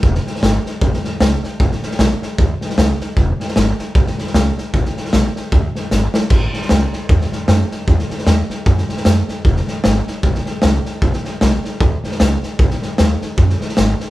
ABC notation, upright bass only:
X:1
M:4/4
L:1/8
Q:"Swing" 1/4=153
K:Emix
V:1 name="Upright bass" clef=bass
E,,, z G,,, z B,,, z C,, z | B,,, z B,,, z D,, z C,, z | E,,, z G,,, z B,,, z C,, z | B,,, z B,,, z D,, z G,,, z |
A,,, z C,, z E,, z F,, z | E,, z E,, z F,, z F,, z | E,,, z G,,, z B,,, z C,, z | B,,, z B,,, z D,, z C,, z |
B,,, z ^D,, z F,, z G,,, z |]